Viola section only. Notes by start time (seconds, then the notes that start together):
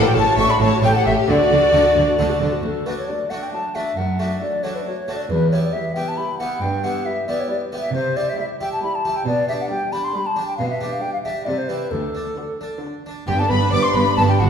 0.05 F#4
0.16 A4
0.27 F#4
0.39 A4
0.50 F#4
0.61 A4
0.72 F#4
0.83 A4
0.95 G4
1.05 A4
1.16 G4
1.28 A4
1.39 F#4
1.50 A4
1.61 F#4
1.72 A4
1.84 F#4
1.95 A4
2.07 F#4
2.18 A4
2.29 F#4
2.41 A4
2.52 F#4
3.09 F#3
3.53 F#3
4.42 F#3
4.86 F#3
5.74 G3
6.18 G3
7.07 G3
7.50 G3
8.37 G3
8.81 G3
9.70 G3
10.14 G3
11.02 G3
11.47 G3
12.37 D3
12.83 D3
13.29 B3
13.39 D4
13.50 B3
13.61 D4
13.72 B3
13.84 D4
13.95 B3
14.06 D4
14.17 B3
14.29 D4
14.39 B3